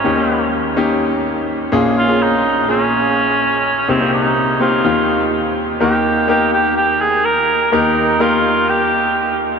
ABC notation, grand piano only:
X:1
M:4/4
L:1/16
Q:1/4=125
K:Ebmix
V:1 name="Grand piano"
[B,DEG] [B,DEG]4 z [B,DEG]6- [B,DEG] z [B,DFA]2- | [B,DFA] [B,DFA]4 z [B,DFA]6- [B,DFA] z3 | [B,CEG] [B,CEG]4 z [B,CEG]2 [B,EFG]6- [B,EFG] z | [B,EGB]3 z [B,EGB]6- [B,EGB] z4 z |
[B,EGB]3 z [B,EGB]6- [B,EGB] z4 z |]
V:2 name="Grand piano" clef=bass
[E,,E,]12- [E,,E,]2 [B,,,B,,]2- | [B,,,B,,]12- [B,,,B,,]2 z2 | [C,,C,]8 [E,,E,]8 | [E,,E,]16 |
[E,,E,]16 |]